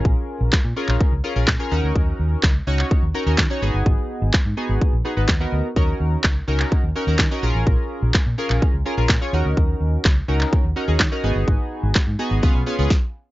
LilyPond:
<<
  \new Staff \with { instrumentName = "Synth keys" } { \time 4/4 \key ees \minor \tempo 4 = 126 <des' f' aes' bes'>4 r8 <des' f' aes' bes'>8. r16 <des' f' aes' bes'>16 <des' f' aes' bes'>8 <des' f' aes' bes'>16 <des' ees' ges' bes'>8~ | <des' ees' ges' bes'>4 r8 <des' ees' ges' des''>8. r16 <des' ees' ges' bes'>16 <des' ees' ges' bes'>8 <des' ees' ges' des''>16 <ces' ees' ges' aes'>8~ | <ces' ees' ges' aes'>4 r8 <ces' ees' ges' aes'>8. r16 <ces' ees' ges' aes'>16 <ces' ees' ges' ces''>8 <ces' ees' ges' bes'>8 r16 | <des' ees' ges' bes'>4~ <des' ees' ges' bes'>16 r16 <des' ees' ges' bes'>8. r16 <des' ees' ges' bes'>16 <des' ees' ges' bes'>8 <des' ees' ges' bes'>16 <des' f' aes' bes'>8~ |
<des' f' aes' bes'>4 r8 <des' f' aes' bes'>8. r16 <des' f' aes' bes'>16 <des' f' aes' bes'>8 <des' f' aes' des''>16 <des' ees' ges' bes'>8~ | <des' ees' ges' bes'>4 r8 <des' ees' ges' bes'>8. r16 <des' ees' ges' bes'>16 <des' ees' ges' aes'>8 <des' ees' ges' bes'>16 <ces' ees' ges' aes'>8~ | <ces' ees' ges' aes'>4 r8 <ces' ees' ges' aes'>8 <ces' des' f' aes'>8 <ces' des' f' aes'>16 <ces' des' f' aes'>16 r4 | }
  \new Staff \with { instrumentName = "Fingered electric bass" } { \clef bass \time 4/4 \key ees \minor r8. bes,,16 r16 bes,16 r16 bes,,16 r16 des,16 r16 bes,,16 bes,16 r16 ees,16 d,16 | ees,8 ees,8 des,8 des,8 r16 ees,16 r16 ees,16 ees16 r16 aes,,16 g,,16 | aes,,16 r8 aes,,16 r16 aes,16 r16 aes,,16 r16 bes,,16 r16 aes,,16 ees,8 d,16 r16 | ees,8 ees,8 des,8 des,8 r16 ees,16 r16 ees,16 ees16 r16 bes,,16 a,,16 |
r8. bes,,16 r16 bes,16 r16 bes,,16 r16 des,16 r16 bes,,16 bes,16 r16 ees,16 d,16 | ees,8 ees,8 des,8 des,8 r16 ees,16 r16 ees,16 ees16 r16 aes,,16 g,,16 | aes,,16 r8 aes,,16 r16 aes,16 r16 aes,,16 des,16 ces,16 r16 des,16 r4 | }
  \new DrumStaff \with { instrumentName = "Drums" } \drummode { \time 4/4 bd4 <hc bd sn>8. hc16 bd4 <hc bd sn>4 | bd4 <hc bd sn>8. hc16 bd4 <hc bd sn>4 | bd4 <hc bd sn>4 bd4 <hc bd sn>4 | bd4 <hc bd sn>8. hc16 bd4 <hc bd sn>4 |
bd4 <hc bd sn>8. hc16 bd4 <hc bd sn>4 | bd4 <hc bd sn>8. hc16 bd4 <hc bd sn>4 | bd4 <hc bd sn>4 bd4 <bd sn>4 | }
>>